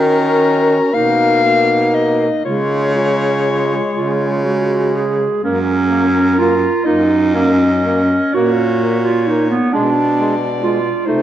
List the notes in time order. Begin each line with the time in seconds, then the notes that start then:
Already playing: D#3 C#4 F#4 A#4
0.94 B2 A#3 D#4 F5
1.43 A#3 D#4
1.95 D#5
2.44 C#3 G#3 F4 C#5
2.95 G#3 F4
3.95 C#3 F4
4.45 G#3 F#4
4.95 G#4
5.43 F#2 A#3 C#4 A#4
5.90 A#3
6.38 A#3 F4
6.85 F#2 A#3 D#4 D#5
7.34 A#3 C#4
7.85 A#3
8.34 A#2 A#3 F#4 C#5
8.82 A#3
9.04 F4
9.27 A#3 D#4
9.50 B3
9.73 B2 G#3 D4 D5
10.19 G#3
10.62 G#3 F4
11.06 C3 A3 D#4 C5